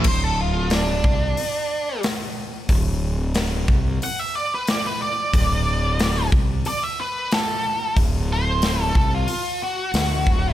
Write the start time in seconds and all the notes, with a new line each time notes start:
0.04 D1 C5, kick, crash
0.24 A4
0.41 F4
0.70 D4, snare, open hi-hat
1.04 C2, kick
1.37 open hi-hat
2.03 snare, open hi-hat
2.69 D1, kick, open hi-hat
3.34 snare, open hi-hat
3.68 C2, kick
4.02 F#5, open hi-hat
4.19 E5
4.35 D5
4.55 B4
4.67 D5, snare, open hi-hat
4.86 B4
5.02 D5
5.34 D1, kick, open hi-hat
5.99 snare, open hi-hat
6.32 C2, kick
6.65 D5, open hi-hat
6.83 E5
7.01 B4
7.31 A4, snare, open hi-hat
7.96 D1, kick, open hi-hat
8.33 C5
8.62 snare, open hi-hat
8.83 A4
8.95 C2 A4, kick
9.15 F4
9.28 open hi-hat
9.63 F#4
9.94 D2, snare, open hi-hat
10.26 D1, kick